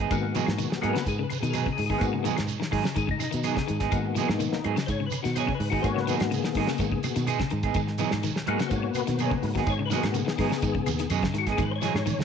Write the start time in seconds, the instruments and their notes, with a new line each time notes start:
0.00 clean electric guitar B3 D#4 G#4, shekere
0.11 fingered electric bass G#2, clean electric guitar D#3, tonewheel organ A#3 B3 F#4, kick, closed hi-hat, claves, shekere
0.23 muted clean electric guitar stroke
0.35 clean electric guitar E3 F#3 B3 D#4 G#4, closed hi-hat, shekere
0.46 fingered electric bass G#2, muted clean electric guitar stroke, snare, claves, shekere
0.58 clean electric guitar D#3, closed hi-hat, shekere
0.70 muted clean electric guitar stroke, snare, shekere
0.81 fingered electric bass G#2, clean electric guitar F#3 B3 D#4 G#4, tonewheel organ A#3 B3 F#4, closed hi-hat, claves
0.89 tonewheel organ A#4
0.93 clean electric guitar C#3, tonewheel organ B4, muted clean electric guitar stroke, snare, closed hi-hat, shekere
1.04 fingered electric bass G#2, tonewheel organ G#4, muted clean electric guitar stroke, kick, closed hi-hat, shekere
1.19 clean electric guitar C#3, tonewheel organ A#4
1.23 tonewheel organ B4
1.30 muted clean electric guitar stroke, closed hi-hat, claves, shekere
1.40 fingered electric bass B2, clean electric guitar D#3, tonewheel organ G#4, closed hi-hat, shekere
1.50 clean electric guitar F#3 D#4, tonewheel organ A#4, muted clean electric guitar stroke, closed hi-hat, claves, shekere
1.54 clean electric guitar G#4, tonewheel organ B4
1.66 clean electric guitar C#3, muted clean electric guitar stroke, kick
1.73 tonewheel organ G#4
1.77 fingered electric bass G#2, muted clean electric guitar stroke, open hi-hat, shekere
1.86 clean electric guitar D#3, tonewheel organ G#4
1.90 clean electric guitar B3 D#4 G#4, kick, shekere
1.98 fingered electric bass G#2, tonewheel organ A#3 B3 F#4, kick, closed hi-hat, claves
2.02 shekere
2.13 clean electric guitar C#3, muted clean electric guitar stroke
2.24 clean electric guitar D#3 F#3 B3 D#4 G#4, closed hi-hat, shekere
2.36 fingered electric bass G#2, muted clean electric guitar stroke, snare, closed hi-hat, claves, shekere
2.48 closed hi-hat, shekere
2.60 clean electric guitar D#3, muted clean electric guitar stroke, snare, shekere
2.71 fingered electric bass G#2, clean electric guitar D#3 F#3 D#4 G#4, kick, open hi-hat, claves
2.84 clean electric guitar C#3, muted clean electric guitar stroke, snare, shekere
2.95 fingered electric bass G#2, clean electric guitar D#3, tonewheel organ G#4, muted clean electric guitar stroke, kick, closed hi-hat, shekere
3.07 clean electric guitar C#3, tonewheel organ D#4, kick
3.19 muted clean electric guitar stroke, snare, closed hi-hat, claves, shekere
3.31 fingered electric bass B2, clean electric guitar D#3, closed hi-hat, shekere
3.44 clean electric guitar F#3 B3 D#4 G#4, closed hi-hat, claves, shekere
3.56 clean electric guitar C#3, tonewheel organ G#4, muted clean electric guitar stroke, kick, snare
3.68 fingered electric bass G#2, clean electric guitar D#3, muted clean electric guitar stroke, closed hi-hat, shekere
3.80 clean electric guitar B3 D#4 G#4, tonewheel organ D4 D#4, kick, snare, closed hi-hat, shekere
3.91 fingered electric bass G#2, clean electric guitar D#3, tonewheel organ A#3 B3 F#4, kick, closed hi-hat, claves, shekere
4.05 tonewheel organ F#4, muted clean electric guitar stroke
4.15 clean electric guitar E3 F#3 B3 D#4 G#4, snare, closed hi-hat, shekere
4.28 fingered electric bass G#2, tonewheel organ D#4, muted clean electric guitar stroke, snare, claves, shekere
4.40 clean electric guitar D#3, tonewheel organ D#4, closed hi-hat, shekere
4.52 muted clean electric guitar stroke, snare, shekere
4.64 fingered electric bass G#2, clean electric guitar F#3 B3 D#4 G#4, closed hi-hat, claves
4.75 clean electric guitar C#3, muted clean electric guitar stroke, snare, closed hi-hat, shekere
4.86 fingered electric bass G#2, tonewheel organ C5 C#5, muted clean electric guitar stroke, kick, closed hi-hat, shekere
5.00 clean electric guitar C#3
5.07 tonewheel organ B4
5.11 muted clean electric guitar stroke, closed hi-hat, claves, shekere
5.22 fingered electric bass B2, clean electric guitar D#3, tonewheel organ F#4, snare, closed hi-hat, shekere
5.35 clean electric guitar F#3 B3 D#4 G#4, tonewheel organ C5, closed hi-hat, claves, shekere
5.40 tonewheel organ C#5
5.47 clean electric guitar C#3, muted clean electric guitar stroke, kick
5.55 tonewheel organ B4
5.60 fingered electric bass G#2, muted clean electric guitar stroke, open hi-hat, shekere
5.70 clean electric guitar D#3 B3 D#4 G#4, tonewheel organ F#4, kick, shekere
5.82 fingered electric bass G#2, tonewheel organ A#3 B3 F#4 C5, kick, closed hi-hat, claves, shekere
5.86 tonewheel organ C#5
5.96 clean electric guitar C#3, muted clean electric guitar stroke, snare
6.00 tonewheel organ B4
6.07 clean electric guitar D#3 F#3 B3 D#4 G#4, closed hi-hat, shekere
6.18 fingered electric bass G#2, tonewheel organ F#4, muted clean electric guitar stroke, snare, closed hi-hat, claves, shekere
6.31 clean electric guitar C#3, tonewheel organ G#4, snare, closed hi-hat, shekere
6.44 clean electric guitar D#3, muted clean electric guitar stroke, snare, shekere
6.55 fingered electric bass G#2, clean electric guitar D#3 F#3 B3 D#4, kick, open hi-hat, claves
6.59 clean electric guitar G#4
6.67 clean electric guitar C#3, muted clean electric guitar stroke, snare, shekere
6.78 fingered electric bass G#2, clean electric guitar D#3, muted clean electric guitar stroke, kick, snare, closed hi-hat, shekere
6.92 clean electric guitar C#3, kick
7.03 tonewheel organ A#3 B3 F#4, muted clean electric guitar stroke, snare, closed hi-hat, claves, shekere
7.16 fingered electric bass B2, clean electric guitar D#3, snare, closed hi-hat, shekere
7.26 clean electric guitar B3 D#4 G#4, closed hi-hat, claves, shekere
7.40 clean electric guitar C#3, muted clean electric guitar stroke, kick, snare
7.50 fingered electric bass G#2, clean electric guitar D#3, muted clean electric guitar stroke, closed hi-hat, shekere
7.63 clean electric guitar B3 D#4 G#4, kick, closed hi-hat, shekere
7.74 fingered electric bass G#2, clean electric guitar D#3, kick, closed hi-hat, claves, shekere
7.87 muted clean electric guitar stroke, snare
7.98 clean electric guitar E3 F#3 B3 D#4 G#4, closed hi-hat, shekere
8.11 fingered electric bass G#2, muted clean electric guitar stroke, snare, claves, shekere
8.23 clean electric guitar D#3, snare, closed hi-hat, shekere
8.36 muted clean electric guitar stroke, snare, shekere
8.46 fingered electric bass G#2, clean electric guitar F#3 B3 D#4 G#4, tonewheel organ A#3 B3 F#4, closed hi-hat, claves
8.59 clean electric guitar C#3, muted clean electric guitar stroke, snare, closed hi-hat, shekere
8.69 fingered electric bass G#2, tonewheel organ C5, muted clean electric guitar stroke, kick, closed hi-hat, shekere
8.73 tonewheel organ C#5
8.83 muted clean electric guitar stroke
8.90 tonewheel organ B4
8.94 muted clean electric guitar stroke, closed hi-hat, claves, shekere
9.07 fingered electric bass B2, clean electric guitar D#3, snare, closed hi-hat, shekere
9.17 clean electric guitar F#3 B3, tonewheel organ C5 C#5, closed hi-hat, claves, shekere
9.21 clean electric guitar D#4 G#4
9.31 clean electric guitar C#3, muted clean electric guitar stroke, kick
9.36 tonewheel organ B4
9.42 fingered electric bass G#2, tonewheel organ A#3 B3 F#4, muted clean electric guitar stroke, open hi-hat, shekere
9.54 clean electric guitar D#3 G#4, tonewheel organ F#4, kick, snare, shekere
9.58 clean electric guitar B3 D#4
9.65 fingered electric bass G#2, tonewheel organ C5, kick, closed hi-hat, claves, shekere
9.70 tonewheel organ C#5
9.79 clean electric guitar C#3, muted clean electric guitar stroke
9.86 tonewheel organ B4
9.90 clean electric guitar D#3 F#3 B3 D#4 G#4, tonewheel organ A#3 B3 F#4, snare, closed hi-hat, shekere
10.03 fingered electric bass G#2, tonewheel organ F#4, muted clean electric guitar stroke, snare, closed hi-hat, claves, shekere
10.14 clean electric guitar C#3, closed hi-hat, shekere
10.18 tonewheel organ B3 G#4
10.26 clean electric guitar D#3, muted clean electric guitar stroke, snare, shekere
10.38 fingered electric bass G#2, clean electric guitar D#3 F#3 B3 D#4 G#4, kick, open hi-hat, claves
10.51 clean electric guitar C#3, muted clean electric guitar stroke, snare, shekere
10.62 fingered electric bass G#2, clean electric guitar D#3, muted clean electric guitar stroke, kick, closed hi-hat, shekere
10.75 clean electric guitar C#3, kick
10.86 fingered electric bass D#2, muted clean electric guitar stroke, snare, closed hi-hat, claves, shekere
10.99 clean electric guitar D#3, snare, closed hi-hat, shekere
11.10 fingered electric bass F#2, clean electric guitar F#3 B3 D#4 G#4, closed hi-hat, claves, shekere
11.23 clean electric guitar C#3, muted clean electric guitar stroke, kick, snare
11.34 fingered electric bass G#2, clean electric guitar D#3, muted clean electric guitar stroke, snare, closed hi-hat, shekere
11.38 tonewheel organ F#4
11.47 clean electric guitar B3 D#4 G#4, kick, snare, closed hi-hat, shekere
11.52 tonewheel organ G#4
11.58 fingered electric bass G#2, clean electric guitar D#3, kick, closed hi-hat, high conga, low conga, claves, shekere
11.62 tonewheel organ B4
11.71 tonewheel organ C5, muted clean electric guitar stroke
11.76 tonewheel organ C#5
11.82 clean electric guitar E3 F#3 D#4 G#4, snare, closed hi-hat, shekere
11.94 fingered electric bass G#2, muted clean electric guitar stroke, snare, claves, shekere
12.06 clean electric guitar D#3, closed hi-hat, high conga, low conga, shekere
12.19 muted clean electric guitar stroke, snare, high conga, shekere